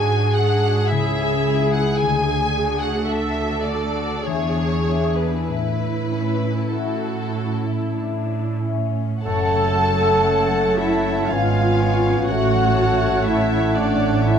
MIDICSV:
0, 0, Header, 1, 12, 480
1, 0, Start_track
1, 0, Key_signature, 3, "major"
1, 0, Tempo, 1088929
1, 893, Time_signature, 3, 2, 24, 8
1, 1372, Tempo, 1158301
1, 1852, Tempo, 1226994
1, 2812, Tempo, 1263158
1, 3771, Key_signature, 3, "minor"
1, 3772, Tempo, 1034483
1, 4732, Tempo, 977199
1, 5692, Tempo, 1011804
1, 6221, End_track
2, 0, Start_track
2, 0, Title_t, "Oboe"
2, 0, Program_c, 0, 68
2, 3772, Note_on_c, 0, 81, 39
2, 4734, Note_on_c, 0, 80, 38
2, 4741, Note_off_c, 0, 81, 0
2, 5214, Note_off_c, 0, 80, 0
2, 5222, Note_on_c, 0, 78, 42
2, 6221, Note_off_c, 0, 78, 0
2, 6221, End_track
3, 0, Start_track
3, 0, Title_t, "Flute section"
3, 0, Program_c, 1, 73
3, 3771, Note_on_c, 1, 81, 54
3, 4476, Note_off_c, 1, 81, 0
3, 4506, Note_on_c, 1, 76, 44
3, 4737, Note_off_c, 1, 76, 0
3, 4738, Note_on_c, 1, 77, 44
3, 5214, Note_on_c, 1, 78, 49
3, 5216, Note_off_c, 1, 77, 0
3, 5682, Note_off_c, 1, 78, 0
3, 5695, Note_on_c, 1, 76, 41
3, 5929, Note_off_c, 1, 76, 0
3, 5940, Note_on_c, 1, 74, 47
3, 6171, Note_off_c, 1, 74, 0
3, 6177, Note_on_c, 1, 76, 54
3, 6221, Note_off_c, 1, 76, 0
3, 6221, End_track
4, 0, Start_track
4, 0, Title_t, "Violin section"
4, 0, Program_c, 2, 48
4, 0, Note_on_c, 2, 80, 64
4, 149, Note_on_c, 2, 78, 58
4, 160, Note_off_c, 2, 80, 0
4, 392, Note_on_c, 2, 76, 59
4, 397, Note_off_c, 2, 78, 0
4, 764, Note_off_c, 2, 76, 0
4, 764, Note_on_c, 2, 78, 56
4, 873, Note_on_c, 2, 80, 70
4, 886, Note_off_c, 2, 78, 0
4, 1233, Note_on_c, 2, 78, 51
4, 1241, Note_off_c, 2, 80, 0
4, 1364, Note_off_c, 2, 78, 0
4, 1367, Note_on_c, 2, 76, 52
4, 1594, Note_on_c, 2, 74, 47
4, 1606, Note_off_c, 2, 76, 0
4, 1842, Note_on_c, 2, 73, 53
4, 1846, Note_off_c, 2, 74, 0
4, 2196, Note_on_c, 2, 71, 42
4, 2200, Note_off_c, 2, 73, 0
4, 2313, Note_off_c, 2, 71, 0
4, 2318, Note_on_c, 2, 71, 50
4, 2798, Note_off_c, 2, 71, 0
4, 2818, Note_on_c, 2, 69, 36
4, 3297, Note_off_c, 2, 69, 0
4, 3766, Note_on_c, 2, 81, 54
4, 4473, Note_off_c, 2, 81, 0
4, 4491, Note_on_c, 2, 76, 43
4, 4723, Note_on_c, 2, 77, 44
4, 4729, Note_off_c, 2, 76, 0
4, 5206, Note_on_c, 2, 78, 49
4, 5208, Note_off_c, 2, 77, 0
4, 5678, Note_off_c, 2, 78, 0
4, 5679, Note_on_c, 2, 76, 50
4, 5917, Note_on_c, 2, 74, 48
4, 5921, Note_off_c, 2, 76, 0
4, 6153, Note_on_c, 2, 76, 51
4, 6164, Note_off_c, 2, 74, 0
4, 6221, Note_off_c, 2, 76, 0
4, 6221, End_track
5, 0, Start_track
5, 0, Title_t, "Clarinet"
5, 0, Program_c, 3, 71
5, 3763, Note_on_c, 3, 73, 44
5, 5187, Note_off_c, 3, 73, 0
5, 5217, Note_on_c, 3, 73, 48
5, 6221, Note_off_c, 3, 73, 0
5, 6221, End_track
6, 0, Start_track
6, 0, Title_t, "Violin section"
6, 0, Program_c, 4, 48
6, 0, Note_on_c, 4, 62, 39
6, 0, Note_on_c, 4, 66, 40
6, 157, Note_off_c, 4, 62, 0
6, 157, Note_off_c, 4, 66, 0
6, 164, Note_on_c, 4, 62, 39
6, 167, Note_on_c, 4, 66, 39
6, 395, Note_on_c, 4, 64, 35
6, 397, Note_on_c, 4, 68, 37
6, 399, Note_off_c, 4, 62, 0
6, 401, Note_off_c, 4, 66, 0
6, 635, Note_off_c, 4, 64, 0
6, 640, Note_off_c, 4, 68, 0
6, 640, Note_on_c, 4, 64, 36
6, 646, Note_on_c, 4, 68, 38
6, 883, Note_off_c, 4, 64, 0
6, 886, Note_off_c, 4, 68, 0
6, 1132, Note_on_c, 4, 62, 37
6, 1132, Note_on_c, 4, 66, 35
6, 1599, Note_off_c, 4, 62, 0
6, 1599, Note_off_c, 4, 66, 0
6, 1608, Note_on_c, 4, 66, 34
6, 1611, Note_on_c, 4, 62, 35
6, 1847, Note_off_c, 4, 62, 0
6, 1848, Note_off_c, 4, 66, 0
6, 1852, Note_on_c, 4, 62, 33
6, 1854, Note_on_c, 4, 68, 34
6, 2082, Note_off_c, 4, 62, 0
6, 2083, Note_off_c, 4, 68, 0
6, 2093, Note_on_c, 4, 62, 29
6, 2093, Note_on_c, 4, 68, 30
6, 2324, Note_off_c, 4, 62, 0
6, 2324, Note_off_c, 4, 68, 0
6, 2570, Note_on_c, 4, 61, 26
6, 2570, Note_on_c, 4, 64, 27
6, 2760, Note_off_c, 4, 61, 0
6, 2760, Note_off_c, 4, 64, 0
6, 2810, Note_on_c, 4, 66, 44
6, 3156, Note_off_c, 4, 66, 0
6, 3174, Note_on_c, 4, 64, 33
6, 3289, Note_on_c, 4, 62, 34
6, 3296, Note_off_c, 4, 64, 0
6, 3536, Note_on_c, 4, 61, 31
6, 3542, Note_off_c, 4, 62, 0
6, 3760, Note_on_c, 4, 78, 38
6, 3763, Note_on_c, 4, 73, 43
6, 3767, Note_off_c, 4, 61, 0
6, 3994, Note_off_c, 4, 73, 0
6, 4008, Note_off_c, 4, 78, 0
6, 4013, Note_on_c, 4, 78, 42
6, 4249, Note_on_c, 4, 81, 42
6, 4491, Note_off_c, 4, 81, 0
6, 4498, Note_on_c, 4, 81, 43
6, 4727, Note_on_c, 4, 77, 43
6, 4728, Note_on_c, 4, 80, 43
6, 4729, Note_off_c, 4, 81, 0
6, 4730, Note_off_c, 4, 78, 0
6, 4966, Note_on_c, 4, 73, 43
6, 4973, Note_off_c, 4, 77, 0
6, 5203, Note_off_c, 4, 73, 0
6, 5209, Note_on_c, 4, 73, 44
6, 5211, Note_off_c, 4, 80, 0
6, 5212, Note_on_c, 4, 78, 48
6, 5445, Note_on_c, 4, 81, 40
6, 5449, Note_off_c, 4, 78, 0
6, 6152, Note_off_c, 4, 81, 0
6, 6162, Note_on_c, 4, 81, 46
6, 6221, Note_off_c, 4, 73, 0
6, 6221, Note_off_c, 4, 81, 0
6, 6221, End_track
7, 0, Start_track
7, 0, Title_t, "Viola section"
7, 0, Program_c, 5, 48
7, 0, Note_on_c, 5, 68, 57
7, 1348, Note_off_c, 5, 68, 0
7, 1364, Note_on_c, 5, 69, 44
7, 1839, Note_off_c, 5, 69, 0
7, 1840, Note_on_c, 5, 68, 42
7, 2313, Note_on_c, 5, 64, 36
7, 2319, Note_off_c, 5, 68, 0
7, 3523, Note_off_c, 5, 64, 0
7, 3768, Note_on_c, 5, 69, 63
7, 4474, Note_off_c, 5, 69, 0
7, 4485, Note_on_c, 5, 64, 57
7, 4723, Note_on_c, 5, 65, 49
7, 4727, Note_off_c, 5, 64, 0
7, 5203, Note_on_c, 5, 66, 62
7, 5208, Note_off_c, 5, 65, 0
7, 5676, Note_off_c, 5, 66, 0
7, 5690, Note_on_c, 5, 64, 57
7, 5922, Note_off_c, 5, 64, 0
7, 5922, Note_on_c, 5, 62, 59
7, 6160, Note_on_c, 5, 64, 59
7, 6166, Note_off_c, 5, 62, 0
7, 6221, Note_off_c, 5, 64, 0
7, 6221, End_track
8, 0, Start_track
8, 0, Title_t, "French horn section"
8, 0, Program_c, 6, 60
8, 3776, Note_on_c, 6, 69, 54
8, 4478, Note_off_c, 6, 69, 0
8, 4495, Note_on_c, 6, 64, 45
8, 4731, Note_off_c, 6, 64, 0
8, 4734, Note_on_c, 6, 65, 39
8, 5212, Note_on_c, 6, 66, 50
8, 5214, Note_off_c, 6, 65, 0
8, 5681, Note_off_c, 6, 66, 0
8, 5693, Note_on_c, 6, 64, 49
8, 5924, Note_off_c, 6, 64, 0
8, 5925, Note_on_c, 6, 62, 47
8, 6163, Note_off_c, 6, 62, 0
8, 6171, Note_on_c, 6, 64, 54
8, 6221, Note_off_c, 6, 64, 0
8, 6221, End_track
9, 0, Start_track
9, 0, Title_t, "Harp"
9, 0, Program_c, 7, 46
9, 0, Note_on_c, 7, 44, 45
9, 0, Note_on_c, 7, 66, 36
9, 0, Note_on_c, 7, 68, 35
9, 159, Note_off_c, 7, 66, 0
9, 165, Note_on_c, 7, 66, 35
9, 401, Note_on_c, 7, 49, 45
9, 424, Note_off_c, 7, 66, 0
9, 426, Note_off_c, 7, 44, 0
9, 642, Note_off_c, 7, 68, 0
9, 645, Note_on_c, 7, 64, 31
9, 647, Note_on_c, 7, 68, 37
9, 889, Note_on_c, 7, 50, 45
9, 909, Note_off_c, 7, 49, 0
9, 909, Note_off_c, 7, 64, 0
9, 910, Note_off_c, 7, 68, 0
9, 1124, Note_on_c, 7, 66, 31
9, 1365, Note_on_c, 7, 69, 35
9, 1595, Note_off_c, 7, 66, 0
9, 1600, Note_on_c, 7, 66, 32
9, 1848, Note_on_c, 7, 52, 38
9, 1867, Note_off_c, 7, 66, 0
9, 1868, Note_off_c, 7, 69, 0
9, 1870, Note_off_c, 7, 50, 0
9, 2089, Note_on_c, 7, 62, 27
9, 2091, Note_on_c, 7, 64, 28
9, 2326, Note_on_c, 7, 45, 34
9, 2343, Note_off_c, 7, 52, 0
9, 2346, Note_off_c, 7, 62, 0
9, 2570, Note_on_c, 7, 61, 27
9, 2805, Note_off_c, 7, 64, 0
9, 2810, Note_on_c, 7, 64, 26
9, 3046, Note_off_c, 7, 61, 0
9, 3050, Note_on_c, 7, 61, 26
9, 3295, Note_on_c, 7, 57, 27
9, 3539, Note_off_c, 7, 64, 0
9, 3544, Note_on_c, 7, 64, 22
9, 3772, Note_on_c, 7, 42, 42
9, 3790, Note_off_c, 7, 64, 0
9, 3791, Note_off_c, 7, 45, 0
9, 3896, Note_on_c, 7, 49, 28
9, 4009, Note_off_c, 7, 57, 0
9, 4015, Note_on_c, 7, 57, 31
9, 4130, Note_off_c, 7, 61, 0
9, 4135, Note_on_c, 7, 61, 29
9, 4258, Note_on_c, 7, 69, 35
9, 4366, Note_off_c, 7, 61, 0
9, 4371, Note_on_c, 7, 61, 29
9, 4488, Note_off_c, 7, 69, 0
9, 4494, Note_on_c, 7, 69, 33
9, 4607, Note_off_c, 7, 61, 0
9, 4613, Note_on_c, 7, 61, 35
9, 4731, Note_on_c, 7, 44, 40
9, 4751, Note_off_c, 7, 57, 0
9, 4751, Note_off_c, 7, 69, 0
9, 4752, Note_off_c, 7, 42, 0
9, 4752, Note_off_c, 7, 49, 0
9, 4856, Note_on_c, 7, 56, 31
9, 4978, Note_on_c, 7, 59, 30
9, 5095, Note_off_c, 7, 61, 0
9, 5101, Note_on_c, 7, 61, 37
9, 5217, Note_on_c, 7, 45, 45
9, 5231, Note_off_c, 7, 44, 0
9, 5232, Note_off_c, 7, 56, 0
9, 5233, Note_off_c, 7, 59, 0
9, 5336, Note_on_c, 7, 54, 31
9, 5452, Note_on_c, 7, 57, 33
9, 5565, Note_off_c, 7, 61, 0
9, 5571, Note_on_c, 7, 61, 32
9, 5687, Note_on_c, 7, 66, 37
9, 5800, Note_off_c, 7, 61, 0
9, 5805, Note_on_c, 7, 61, 36
9, 5921, Note_off_c, 7, 66, 0
9, 5926, Note_on_c, 7, 66, 34
9, 6038, Note_off_c, 7, 61, 0
9, 6044, Note_on_c, 7, 61, 38
9, 6166, Note_off_c, 7, 57, 0
9, 6172, Note_on_c, 7, 57, 35
9, 6221, Note_off_c, 7, 45, 0
9, 6221, Note_off_c, 7, 54, 0
9, 6221, Note_off_c, 7, 57, 0
9, 6221, Note_off_c, 7, 61, 0
9, 6221, Note_off_c, 7, 66, 0
9, 6221, End_track
10, 0, Start_track
10, 0, Title_t, "Bassoon"
10, 0, Program_c, 8, 70
10, 3775, Note_on_c, 8, 57, 44
10, 4737, Note_on_c, 8, 59, 49
10, 4744, Note_off_c, 8, 57, 0
10, 5222, Note_on_c, 8, 57, 46
10, 5230, Note_off_c, 8, 59, 0
10, 6221, Note_off_c, 8, 57, 0
10, 6221, End_track
11, 0, Start_track
11, 0, Title_t, "Cello section"
11, 0, Program_c, 10, 48
11, 0, Note_on_c, 10, 44, 48
11, 348, Note_off_c, 10, 44, 0
11, 402, Note_on_c, 10, 37, 47
11, 833, Note_off_c, 10, 37, 0
11, 890, Note_on_c, 10, 38, 43
11, 1314, Note_off_c, 10, 38, 0
11, 1371, Note_on_c, 10, 38, 42
11, 1794, Note_off_c, 10, 38, 0
11, 1852, Note_on_c, 10, 40, 41
11, 2268, Note_off_c, 10, 40, 0
11, 2325, Note_on_c, 10, 45, 38
11, 2754, Note_off_c, 10, 45, 0
11, 2811, Note_on_c, 10, 45, 35
11, 3236, Note_off_c, 10, 45, 0
11, 3297, Note_on_c, 10, 45, 35
11, 3722, Note_off_c, 10, 45, 0
11, 3771, Note_on_c, 10, 42, 39
11, 4713, Note_off_c, 10, 42, 0
11, 4732, Note_on_c, 10, 44, 46
11, 5213, Note_off_c, 10, 44, 0
11, 5215, Note_on_c, 10, 45, 44
11, 6221, Note_off_c, 10, 45, 0
11, 6221, End_track
12, 0, Start_track
12, 0, Title_t, "Double bass section"
12, 0, Program_c, 11, 48
12, 3769, Note_on_c, 11, 30, 45
12, 4711, Note_off_c, 11, 30, 0
12, 4736, Note_on_c, 11, 32, 41
12, 5215, Note_off_c, 11, 32, 0
12, 5217, Note_on_c, 11, 33, 43
12, 6221, Note_off_c, 11, 33, 0
12, 6221, End_track
0, 0, End_of_file